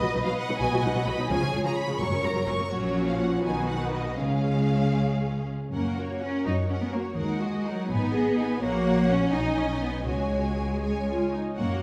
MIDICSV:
0, 0, Header, 1, 6, 480
1, 0, Start_track
1, 0, Key_signature, 6, "major"
1, 0, Tempo, 462606
1, 1339, Time_signature, 6, 3, 24, 8
1, 1819, Tempo, 478469
1, 3259, Tempo, 508475
1, 5659, Tempo, 479616
1, 9499, Tempo, 498339
1, 11674, End_track
2, 0, Start_track
2, 0, Title_t, "Violin section"
2, 0, Program_c, 0, 48
2, 0, Note_on_c, 0, 75, 72
2, 246, Note_off_c, 0, 75, 0
2, 249, Note_on_c, 0, 77, 56
2, 374, Note_off_c, 0, 77, 0
2, 378, Note_on_c, 0, 78, 70
2, 605, Note_on_c, 0, 80, 66
2, 616, Note_off_c, 0, 78, 0
2, 848, Note_off_c, 0, 80, 0
2, 849, Note_on_c, 0, 78, 62
2, 1094, Note_off_c, 0, 78, 0
2, 1099, Note_on_c, 0, 83, 67
2, 1338, Note_off_c, 0, 83, 0
2, 1339, Note_on_c, 0, 80, 80
2, 1690, Note_off_c, 0, 80, 0
2, 1716, Note_on_c, 0, 82, 60
2, 1821, Note_on_c, 0, 83, 66
2, 1826, Note_off_c, 0, 82, 0
2, 2057, Note_off_c, 0, 83, 0
2, 2061, Note_on_c, 0, 85, 68
2, 2297, Note_off_c, 0, 85, 0
2, 2304, Note_on_c, 0, 82, 60
2, 2536, Note_on_c, 0, 85, 66
2, 2538, Note_off_c, 0, 82, 0
2, 2772, Note_on_c, 0, 73, 58
2, 2775, Note_off_c, 0, 85, 0
2, 3136, Note_off_c, 0, 73, 0
2, 3148, Note_on_c, 0, 77, 46
2, 3264, Note_off_c, 0, 77, 0
2, 3266, Note_on_c, 0, 78, 42
2, 3489, Note_on_c, 0, 80, 53
2, 3493, Note_off_c, 0, 78, 0
2, 3720, Note_off_c, 0, 80, 0
2, 3723, Note_on_c, 0, 78, 51
2, 3960, Note_off_c, 0, 78, 0
2, 3963, Note_on_c, 0, 75, 46
2, 4206, Note_off_c, 0, 75, 0
2, 4210, Note_on_c, 0, 77, 52
2, 5421, Note_off_c, 0, 77, 0
2, 5660, Note_on_c, 0, 78, 35
2, 5887, Note_off_c, 0, 78, 0
2, 5908, Note_on_c, 0, 73, 35
2, 6130, Note_on_c, 0, 78, 35
2, 6150, Note_off_c, 0, 73, 0
2, 6368, Note_on_c, 0, 73, 34
2, 6380, Note_off_c, 0, 78, 0
2, 6617, Note_off_c, 0, 73, 0
2, 6625, Note_on_c, 0, 78, 34
2, 6845, Note_off_c, 0, 78, 0
2, 6854, Note_on_c, 0, 73, 37
2, 7087, Note_on_c, 0, 78, 45
2, 7095, Note_off_c, 0, 73, 0
2, 7318, Note_off_c, 0, 78, 0
2, 7342, Note_on_c, 0, 75, 44
2, 7591, Note_off_c, 0, 75, 0
2, 7599, Note_on_c, 0, 78, 45
2, 7825, Note_on_c, 0, 80, 44
2, 7842, Note_off_c, 0, 78, 0
2, 8051, Note_off_c, 0, 80, 0
2, 8071, Note_on_c, 0, 75, 47
2, 8306, Note_off_c, 0, 75, 0
2, 8317, Note_on_c, 0, 80, 43
2, 8548, Note_off_c, 0, 80, 0
2, 8550, Note_on_c, 0, 78, 60
2, 9223, Note_off_c, 0, 78, 0
2, 9258, Note_on_c, 0, 80, 51
2, 9974, Note_off_c, 0, 80, 0
2, 9985, Note_on_c, 0, 80, 43
2, 10693, Note_off_c, 0, 80, 0
2, 10705, Note_on_c, 0, 80, 37
2, 11220, Note_off_c, 0, 80, 0
2, 11424, Note_on_c, 0, 78, 48
2, 11655, Note_off_c, 0, 78, 0
2, 11674, End_track
3, 0, Start_track
3, 0, Title_t, "Violin section"
3, 0, Program_c, 1, 48
3, 0, Note_on_c, 1, 71, 52
3, 0, Note_on_c, 1, 75, 50
3, 1306, Note_off_c, 1, 75, 0
3, 1330, Note_on_c, 1, 68, 52
3, 1330, Note_on_c, 1, 73, 53
3, 1339, Note_off_c, 1, 71, 0
3, 2051, Note_on_c, 1, 70, 51
3, 2052, Note_off_c, 1, 68, 0
3, 2757, Note_off_c, 1, 70, 0
3, 2766, Note_off_c, 1, 73, 0
3, 2778, Note_on_c, 1, 73, 46
3, 2780, Note_on_c, 1, 66, 45
3, 3454, Note_off_c, 1, 66, 0
3, 3454, Note_off_c, 1, 73, 0
3, 3487, Note_on_c, 1, 71, 45
3, 3493, Note_on_c, 1, 66, 43
3, 4197, Note_off_c, 1, 71, 0
3, 4199, Note_off_c, 1, 66, 0
3, 4221, Note_on_c, 1, 61, 36
3, 4221, Note_on_c, 1, 68, 35
3, 5443, Note_off_c, 1, 61, 0
3, 5468, Note_off_c, 1, 68, 0
3, 5664, Note_on_c, 1, 70, 40
3, 5889, Note_off_c, 1, 70, 0
3, 5912, Note_on_c, 1, 73, 36
3, 6152, Note_off_c, 1, 73, 0
3, 6171, Note_on_c, 1, 70, 38
3, 6399, Note_on_c, 1, 73, 42
3, 6401, Note_off_c, 1, 70, 0
3, 6633, Note_off_c, 1, 73, 0
3, 6647, Note_on_c, 1, 70, 39
3, 6856, Note_off_c, 1, 70, 0
3, 6869, Note_on_c, 1, 73, 37
3, 7102, Note_off_c, 1, 73, 0
3, 7104, Note_on_c, 1, 70, 42
3, 7328, Note_off_c, 1, 70, 0
3, 7339, Note_on_c, 1, 66, 45
3, 7582, Note_on_c, 1, 70, 40
3, 7590, Note_off_c, 1, 66, 0
3, 7833, Note_off_c, 1, 70, 0
3, 7833, Note_on_c, 1, 71, 51
3, 8056, Note_off_c, 1, 71, 0
3, 8078, Note_on_c, 1, 68, 51
3, 8309, Note_off_c, 1, 68, 0
3, 8318, Note_on_c, 1, 71, 51
3, 8549, Note_off_c, 1, 71, 0
3, 8558, Note_on_c, 1, 73, 56
3, 9227, Note_off_c, 1, 73, 0
3, 9258, Note_on_c, 1, 75, 52
3, 9965, Note_on_c, 1, 73, 41
3, 9974, Note_off_c, 1, 75, 0
3, 10679, Note_off_c, 1, 73, 0
3, 10691, Note_on_c, 1, 73, 45
3, 11212, Note_off_c, 1, 73, 0
3, 11424, Note_on_c, 1, 73, 45
3, 11655, Note_off_c, 1, 73, 0
3, 11674, End_track
4, 0, Start_track
4, 0, Title_t, "Viola section"
4, 0, Program_c, 2, 48
4, 18, Note_on_c, 2, 66, 44
4, 20, Note_on_c, 2, 54, 43
4, 66, Note_off_c, 2, 66, 0
4, 68, Note_off_c, 2, 54, 0
4, 144, Note_on_c, 2, 54, 45
4, 147, Note_on_c, 2, 63, 44
4, 191, Note_off_c, 2, 54, 0
4, 194, Note_off_c, 2, 63, 0
4, 264, Note_on_c, 2, 59, 59
4, 268, Note_on_c, 2, 54, 64
4, 312, Note_off_c, 2, 59, 0
4, 315, Note_off_c, 2, 54, 0
4, 511, Note_on_c, 2, 63, 42
4, 515, Note_on_c, 2, 54, 48
4, 558, Note_off_c, 2, 63, 0
4, 561, Note_off_c, 2, 54, 0
4, 639, Note_on_c, 2, 54, 65
4, 639, Note_on_c, 2, 59, 70
4, 683, Note_off_c, 2, 54, 0
4, 684, Note_off_c, 2, 59, 0
4, 769, Note_on_c, 2, 54, 45
4, 772, Note_on_c, 2, 66, 45
4, 811, Note_off_c, 2, 54, 0
4, 813, Note_off_c, 2, 66, 0
4, 887, Note_on_c, 2, 63, 53
4, 888, Note_on_c, 2, 54, 54
4, 929, Note_off_c, 2, 63, 0
4, 930, Note_off_c, 2, 54, 0
4, 988, Note_on_c, 2, 59, 57
4, 989, Note_on_c, 2, 54, 61
4, 1034, Note_off_c, 2, 59, 0
4, 1035, Note_off_c, 2, 54, 0
4, 1111, Note_on_c, 2, 54, 41
4, 1111, Note_on_c, 2, 66, 46
4, 1156, Note_off_c, 2, 54, 0
4, 1156, Note_off_c, 2, 66, 0
4, 1231, Note_on_c, 2, 54, 51
4, 1236, Note_on_c, 2, 63, 49
4, 1276, Note_off_c, 2, 54, 0
4, 1280, Note_off_c, 2, 63, 0
4, 1351, Note_on_c, 2, 53, 65
4, 1352, Note_off_c, 2, 53, 0
4, 1352, Note_on_c, 2, 53, 64
4, 1397, Note_off_c, 2, 53, 0
4, 1468, Note_on_c, 2, 53, 37
4, 1468, Note_on_c, 2, 61, 36
4, 1514, Note_off_c, 2, 53, 0
4, 1514, Note_off_c, 2, 61, 0
4, 1588, Note_on_c, 2, 56, 41
4, 1590, Note_on_c, 2, 53, 43
4, 1634, Note_off_c, 2, 56, 0
4, 1636, Note_off_c, 2, 53, 0
4, 1703, Note_on_c, 2, 53, 63
4, 1708, Note_off_c, 2, 53, 0
4, 1708, Note_on_c, 2, 53, 50
4, 1754, Note_off_c, 2, 53, 0
4, 1949, Note_on_c, 2, 56, 47
4, 1950, Note_on_c, 2, 53, 45
4, 1994, Note_off_c, 2, 56, 0
4, 1995, Note_off_c, 2, 53, 0
4, 2073, Note_on_c, 2, 54, 57
4, 2077, Note_off_c, 2, 54, 0
4, 2077, Note_on_c, 2, 54, 51
4, 2121, Note_off_c, 2, 54, 0
4, 2184, Note_on_c, 2, 54, 44
4, 2188, Note_on_c, 2, 61, 38
4, 2230, Note_off_c, 2, 54, 0
4, 2234, Note_off_c, 2, 61, 0
4, 2304, Note_on_c, 2, 58, 43
4, 2305, Note_on_c, 2, 54, 44
4, 2350, Note_off_c, 2, 58, 0
4, 2351, Note_off_c, 2, 54, 0
4, 2417, Note_on_c, 2, 54, 57
4, 2422, Note_off_c, 2, 54, 0
4, 2422, Note_on_c, 2, 54, 61
4, 2468, Note_off_c, 2, 54, 0
4, 2528, Note_on_c, 2, 61, 43
4, 2531, Note_on_c, 2, 54, 37
4, 2578, Note_off_c, 2, 61, 0
4, 2579, Note_off_c, 2, 54, 0
4, 2652, Note_on_c, 2, 54, 47
4, 2652, Note_on_c, 2, 58, 47
4, 2700, Note_off_c, 2, 54, 0
4, 2701, Note_off_c, 2, 58, 0
4, 2784, Note_on_c, 2, 54, 49
4, 2787, Note_on_c, 2, 61, 47
4, 3117, Note_off_c, 2, 54, 0
4, 3148, Note_on_c, 2, 53, 41
4, 3458, Note_off_c, 2, 61, 0
4, 3494, Note_off_c, 2, 53, 0
4, 3500, Note_on_c, 2, 51, 42
4, 3504, Note_on_c, 2, 63, 43
4, 4211, Note_on_c, 2, 56, 41
4, 4216, Note_on_c, 2, 61, 38
4, 4217, Note_off_c, 2, 51, 0
4, 4220, Note_off_c, 2, 63, 0
4, 5437, Note_off_c, 2, 56, 0
4, 5440, Note_off_c, 2, 61, 0
4, 5654, Note_on_c, 2, 61, 36
4, 5884, Note_off_c, 2, 61, 0
4, 5893, Note_on_c, 2, 66, 35
4, 6132, Note_on_c, 2, 61, 37
4, 6142, Note_off_c, 2, 66, 0
4, 6381, Note_on_c, 2, 66, 41
4, 6382, Note_off_c, 2, 61, 0
4, 6620, Note_on_c, 2, 61, 35
4, 6624, Note_off_c, 2, 66, 0
4, 6842, Note_off_c, 2, 61, 0
4, 6857, Note_on_c, 2, 66, 35
4, 7083, Note_on_c, 2, 63, 42
4, 7096, Note_off_c, 2, 66, 0
4, 7316, Note_off_c, 2, 63, 0
4, 7330, Note_on_c, 2, 66, 39
4, 7583, Note_on_c, 2, 63, 44
4, 7585, Note_off_c, 2, 66, 0
4, 7825, Note_off_c, 2, 63, 0
4, 7837, Note_on_c, 2, 63, 52
4, 8058, Note_off_c, 2, 63, 0
4, 8071, Note_on_c, 2, 68, 50
4, 8296, Note_on_c, 2, 63, 45
4, 8306, Note_off_c, 2, 68, 0
4, 8538, Note_off_c, 2, 63, 0
4, 8543, Note_on_c, 2, 66, 54
4, 9220, Note_off_c, 2, 66, 0
4, 9265, Note_on_c, 2, 63, 54
4, 9974, Note_on_c, 2, 66, 40
4, 9977, Note_off_c, 2, 63, 0
4, 10687, Note_off_c, 2, 66, 0
4, 10702, Note_on_c, 2, 68, 53
4, 10779, Note_off_c, 2, 68, 0
4, 10950, Note_on_c, 2, 65, 47
4, 11186, Note_off_c, 2, 65, 0
4, 11200, Note_on_c, 2, 63, 37
4, 11428, Note_off_c, 2, 63, 0
4, 11435, Note_on_c, 2, 66, 49
4, 11660, Note_off_c, 2, 66, 0
4, 11674, End_track
5, 0, Start_track
5, 0, Title_t, "Cello section"
5, 0, Program_c, 3, 48
5, 15, Note_on_c, 3, 47, 45
5, 64, Note_off_c, 3, 47, 0
5, 128, Note_on_c, 3, 47, 48
5, 179, Note_off_c, 3, 47, 0
5, 244, Note_on_c, 3, 47, 60
5, 296, Note_off_c, 3, 47, 0
5, 496, Note_on_c, 3, 47, 43
5, 545, Note_off_c, 3, 47, 0
5, 617, Note_on_c, 3, 47, 64
5, 666, Note_off_c, 3, 47, 0
5, 733, Note_on_c, 3, 47, 42
5, 783, Note_off_c, 3, 47, 0
5, 854, Note_on_c, 3, 47, 42
5, 903, Note_off_c, 3, 47, 0
5, 980, Note_on_c, 3, 47, 54
5, 1028, Note_off_c, 3, 47, 0
5, 1096, Note_on_c, 3, 47, 44
5, 1145, Note_off_c, 3, 47, 0
5, 1204, Note_on_c, 3, 47, 44
5, 1254, Note_off_c, 3, 47, 0
5, 1332, Note_on_c, 3, 49, 57
5, 1381, Note_off_c, 3, 49, 0
5, 1452, Note_on_c, 3, 49, 43
5, 1501, Note_off_c, 3, 49, 0
5, 1575, Note_on_c, 3, 49, 44
5, 1623, Note_off_c, 3, 49, 0
5, 1694, Note_on_c, 3, 49, 56
5, 1743, Note_off_c, 3, 49, 0
5, 1931, Note_on_c, 3, 49, 41
5, 1980, Note_off_c, 3, 49, 0
5, 2051, Note_on_c, 3, 42, 59
5, 2099, Note_off_c, 3, 42, 0
5, 2161, Note_on_c, 3, 42, 41
5, 2212, Note_off_c, 3, 42, 0
5, 2283, Note_on_c, 3, 42, 42
5, 2334, Note_off_c, 3, 42, 0
5, 2396, Note_on_c, 3, 42, 52
5, 2447, Note_off_c, 3, 42, 0
5, 2523, Note_on_c, 3, 42, 39
5, 2573, Note_off_c, 3, 42, 0
5, 2647, Note_on_c, 3, 42, 38
5, 2696, Note_off_c, 3, 42, 0
5, 2772, Note_on_c, 3, 46, 46
5, 3451, Note_off_c, 3, 46, 0
5, 3487, Note_on_c, 3, 47, 46
5, 4197, Note_off_c, 3, 47, 0
5, 4205, Note_on_c, 3, 49, 38
5, 5460, Note_off_c, 3, 49, 0
5, 5653, Note_on_c, 3, 58, 53
5, 6110, Note_off_c, 3, 58, 0
5, 6144, Note_on_c, 3, 61, 59
5, 6376, Note_on_c, 3, 63, 61
5, 6388, Note_off_c, 3, 61, 0
5, 6456, Note_off_c, 3, 63, 0
5, 6618, Note_on_c, 3, 61, 58
5, 6667, Note_off_c, 3, 61, 0
5, 6738, Note_on_c, 3, 59, 52
5, 6787, Note_off_c, 3, 59, 0
5, 6851, Note_on_c, 3, 58, 56
5, 6931, Note_off_c, 3, 58, 0
5, 7100, Note_on_c, 3, 56, 56
5, 7582, Note_off_c, 3, 56, 0
5, 7596, Note_on_c, 3, 54, 59
5, 7835, Note_on_c, 3, 59, 72
5, 7840, Note_off_c, 3, 54, 0
5, 8541, Note_on_c, 3, 58, 80
5, 8542, Note_off_c, 3, 59, 0
5, 9010, Note_off_c, 3, 58, 0
5, 9014, Note_on_c, 3, 61, 73
5, 9255, Note_on_c, 3, 63, 75
5, 9257, Note_off_c, 3, 61, 0
5, 9498, Note_off_c, 3, 63, 0
5, 9501, Note_on_c, 3, 61, 67
5, 9730, Note_on_c, 3, 59, 60
5, 9736, Note_off_c, 3, 61, 0
5, 9968, Note_on_c, 3, 56, 54
5, 9972, Note_off_c, 3, 59, 0
5, 11160, Note_off_c, 3, 56, 0
5, 11422, Note_on_c, 3, 58, 62
5, 11674, Note_off_c, 3, 58, 0
5, 11674, End_track
6, 0, Start_track
6, 0, Title_t, "Double bass section"
6, 0, Program_c, 4, 48
6, 152, Note_on_c, 4, 35, 43
6, 198, Note_off_c, 4, 35, 0
6, 626, Note_on_c, 4, 35, 69
6, 673, Note_off_c, 4, 35, 0
6, 866, Note_on_c, 4, 35, 44
6, 913, Note_off_c, 4, 35, 0
6, 1103, Note_on_c, 4, 35, 44
6, 1150, Note_off_c, 4, 35, 0
6, 1343, Note_on_c, 4, 37, 58
6, 1390, Note_off_c, 4, 37, 0
6, 1582, Note_on_c, 4, 37, 43
6, 1629, Note_off_c, 4, 37, 0
6, 2061, Note_on_c, 4, 30, 55
6, 2108, Note_off_c, 4, 30, 0
6, 2295, Note_on_c, 4, 30, 41
6, 2343, Note_off_c, 4, 30, 0
6, 2540, Note_on_c, 4, 30, 36
6, 2587, Note_off_c, 4, 30, 0
6, 2780, Note_on_c, 4, 34, 49
6, 3454, Note_off_c, 4, 34, 0
6, 3501, Note_on_c, 4, 35, 44
6, 4203, Note_off_c, 4, 35, 0
6, 4221, Note_on_c, 4, 37, 39
6, 5467, Note_off_c, 4, 37, 0
6, 5652, Note_on_c, 4, 42, 44
6, 6273, Note_off_c, 4, 42, 0
6, 6378, Note_on_c, 4, 42, 52
6, 6982, Note_off_c, 4, 42, 0
6, 7096, Note_on_c, 4, 39, 57
6, 7723, Note_off_c, 4, 39, 0
6, 7834, Note_on_c, 4, 32, 60
6, 8431, Note_off_c, 4, 32, 0
6, 8541, Note_on_c, 4, 34, 54
6, 9219, Note_off_c, 4, 34, 0
6, 9262, Note_on_c, 4, 35, 51
6, 9961, Note_off_c, 4, 35, 0
6, 9973, Note_on_c, 4, 37, 45
6, 11228, Note_off_c, 4, 37, 0
6, 11429, Note_on_c, 4, 42, 53
6, 11674, Note_off_c, 4, 42, 0
6, 11674, End_track
0, 0, End_of_file